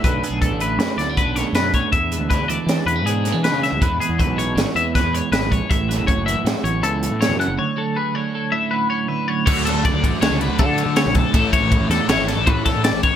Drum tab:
CC |----------|----------|----------|----------|
RD |----------|----------|----------|----------|
HH |xxxxxxxxxx|xxxxxxxxxx|xxxxxxxxxx|xxxxxxxxxx|
SD |----oo-oo-|--o-o--ooo|----o-o-o-|-o--o---o-|
BD |o-o---o--o|o-o-------|o-o---o--o|o-o-------|

CC |----------|x---------|----------|
RD |----------|-xxxxxxxxx|xxxxxxxxxx|
HH |----------|----------|----------|
SD |----------|-oo-o---o-|---ooo-oo-|
BD |----------|o-oo--o--o|ooo---oo-o|